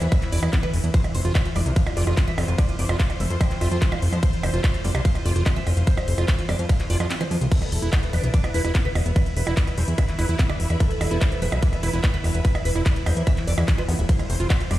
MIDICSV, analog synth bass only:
0, 0, Header, 1, 2, 480
1, 0, Start_track
1, 0, Tempo, 410959
1, 1098, Time_signature, 4, 2, 24, 8
1, 17272, End_track
2, 0, Start_track
2, 0, Title_t, "Analog synth bass"
2, 0, Program_c, 0, 38
2, 18, Note_on_c, 0, 40, 84
2, 88, Note_off_c, 0, 40, 0
2, 378, Note_on_c, 0, 28, 99
2, 448, Note_off_c, 0, 28, 0
2, 498, Note_on_c, 0, 40, 84
2, 568, Note_off_c, 0, 40, 0
2, 858, Note_on_c, 0, 28, 94
2, 928, Note_off_c, 0, 28, 0
2, 978, Note_on_c, 0, 40, 83
2, 1048, Note_off_c, 0, 40, 0
2, 1339, Note_on_c, 0, 29, 98
2, 1408, Note_off_c, 0, 29, 0
2, 1459, Note_on_c, 0, 29, 83
2, 1528, Note_off_c, 0, 29, 0
2, 1818, Note_on_c, 0, 29, 97
2, 1888, Note_off_c, 0, 29, 0
2, 1938, Note_on_c, 0, 36, 81
2, 2008, Note_off_c, 0, 36, 0
2, 2298, Note_on_c, 0, 29, 99
2, 2368, Note_off_c, 0, 29, 0
2, 2418, Note_on_c, 0, 29, 86
2, 2488, Note_off_c, 0, 29, 0
2, 2778, Note_on_c, 0, 29, 96
2, 2848, Note_off_c, 0, 29, 0
2, 2898, Note_on_c, 0, 29, 84
2, 2968, Note_off_c, 0, 29, 0
2, 3258, Note_on_c, 0, 29, 98
2, 3328, Note_off_c, 0, 29, 0
2, 3378, Note_on_c, 0, 29, 86
2, 3448, Note_off_c, 0, 29, 0
2, 3738, Note_on_c, 0, 29, 97
2, 3808, Note_off_c, 0, 29, 0
2, 3858, Note_on_c, 0, 41, 81
2, 3928, Note_off_c, 0, 41, 0
2, 4219, Note_on_c, 0, 29, 96
2, 4288, Note_off_c, 0, 29, 0
2, 4338, Note_on_c, 0, 41, 84
2, 4408, Note_off_c, 0, 41, 0
2, 4699, Note_on_c, 0, 29, 97
2, 4768, Note_off_c, 0, 29, 0
2, 4818, Note_on_c, 0, 41, 85
2, 4888, Note_off_c, 0, 41, 0
2, 5178, Note_on_c, 0, 29, 96
2, 5248, Note_off_c, 0, 29, 0
2, 5298, Note_on_c, 0, 29, 85
2, 5368, Note_off_c, 0, 29, 0
2, 5658, Note_on_c, 0, 29, 97
2, 5728, Note_off_c, 0, 29, 0
2, 5778, Note_on_c, 0, 36, 83
2, 5848, Note_off_c, 0, 36, 0
2, 6138, Note_on_c, 0, 29, 96
2, 6208, Note_off_c, 0, 29, 0
2, 6258, Note_on_c, 0, 29, 85
2, 6328, Note_off_c, 0, 29, 0
2, 6618, Note_on_c, 0, 29, 100
2, 6688, Note_off_c, 0, 29, 0
2, 6738, Note_on_c, 0, 29, 85
2, 6808, Note_off_c, 0, 29, 0
2, 7098, Note_on_c, 0, 29, 102
2, 7168, Note_off_c, 0, 29, 0
2, 7218, Note_on_c, 0, 29, 82
2, 7288, Note_off_c, 0, 29, 0
2, 7578, Note_on_c, 0, 29, 97
2, 7648, Note_off_c, 0, 29, 0
2, 7698, Note_on_c, 0, 41, 84
2, 7768, Note_off_c, 0, 41, 0
2, 8058, Note_on_c, 0, 29, 96
2, 8128, Note_off_c, 0, 29, 0
2, 8178, Note_on_c, 0, 41, 87
2, 8248, Note_off_c, 0, 41, 0
2, 8538, Note_on_c, 0, 41, 97
2, 8608, Note_off_c, 0, 41, 0
2, 8658, Note_on_c, 0, 36, 85
2, 8728, Note_off_c, 0, 36, 0
2, 9018, Note_on_c, 0, 28, 96
2, 9088, Note_off_c, 0, 28, 0
2, 9138, Note_on_c, 0, 28, 84
2, 9208, Note_off_c, 0, 28, 0
2, 9498, Note_on_c, 0, 28, 95
2, 9568, Note_off_c, 0, 28, 0
2, 9618, Note_on_c, 0, 35, 84
2, 9688, Note_off_c, 0, 35, 0
2, 9978, Note_on_c, 0, 28, 98
2, 10048, Note_off_c, 0, 28, 0
2, 10099, Note_on_c, 0, 28, 85
2, 10168, Note_off_c, 0, 28, 0
2, 10458, Note_on_c, 0, 28, 97
2, 10528, Note_off_c, 0, 28, 0
2, 10579, Note_on_c, 0, 28, 87
2, 10648, Note_off_c, 0, 28, 0
2, 10939, Note_on_c, 0, 28, 95
2, 11008, Note_off_c, 0, 28, 0
2, 11059, Note_on_c, 0, 28, 85
2, 11128, Note_off_c, 0, 28, 0
2, 11418, Note_on_c, 0, 28, 96
2, 11488, Note_off_c, 0, 28, 0
2, 11538, Note_on_c, 0, 40, 87
2, 11608, Note_off_c, 0, 40, 0
2, 11898, Note_on_c, 0, 28, 99
2, 11968, Note_off_c, 0, 28, 0
2, 12019, Note_on_c, 0, 40, 86
2, 12088, Note_off_c, 0, 40, 0
2, 12379, Note_on_c, 0, 28, 96
2, 12448, Note_off_c, 0, 28, 0
2, 12498, Note_on_c, 0, 40, 85
2, 12568, Note_off_c, 0, 40, 0
2, 12858, Note_on_c, 0, 28, 95
2, 12928, Note_off_c, 0, 28, 0
2, 12979, Note_on_c, 0, 28, 88
2, 13048, Note_off_c, 0, 28, 0
2, 13338, Note_on_c, 0, 28, 98
2, 13408, Note_off_c, 0, 28, 0
2, 13458, Note_on_c, 0, 35, 80
2, 13528, Note_off_c, 0, 35, 0
2, 13818, Note_on_c, 0, 28, 98
2, 13888, Note_off_c, 0, 28, 0
2, 13938, Note_on_c, 0, 28, 83
2, 14008, Note_off_c, 0, 28, 0
2, 14298, Note_on_c, 0, 28, 97
2, 14368, Note_off_c, 0, 28, 0
2, 14418, Note_on_c, 0, 28, 87
2, 14488, Note_off_c, 0, 28, 0
2, 14778, Note_on_c, 0, 28, 100
2, 14848, Note_off_c, 0, 28, 0
2, 14898, Note_on_c, 0, 28, 88
2, 14968, Note_off_c, 0, 28, 0
2, 15258, Note_on_c, 0, 28, 97
2, 15328, Note_off_c, 0, 28, 0
2, 15378, Note_on_c, 0, 40, 81
2, 15448, Note_off_c, 0, 40, 0
2, 15738, Note_on_c, 0, 28, 98
2, 15808, Note_off_c, 0, 28, 0
2, 15858, Note_on_c, 0, 40, 85
2, 15928, Note_off_c, 0, 40, 0
2, 16218, Note_on_c, 0, 40, 97
2, 16288, Note_off_c, 0, 40, 0
2, 16338, Note_on_c, 0, 26, 87
2, 16408, Note_off_c, 0, 26, 0
2, 16698, Note_on_c, 0, 29, 101
2, 16768, Note_off_c, 0, 29, 0
2, 16818, Note_on_c, 0, 29, 83
2, 16888, Note_off_c, 0, 29, 0
2, 17178, Note_on_c, 0, 29, 97
2, 17248, Note_off_c, 0, 29, 0
2, 17272, End_track
0, 0, End_of_file